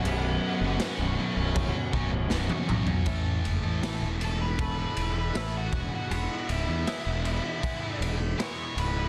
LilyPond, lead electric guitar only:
\new Staff \with { instrumentName = "Lead electric guitar" } { \time 4/4 \key a \lydian \tempo 4 = 79 <b b'>4 r2. | r4. a'16 b'4 b'8 fis'8 fis'16~ | fis'8 e'2 r8 cis''8 b'8 | }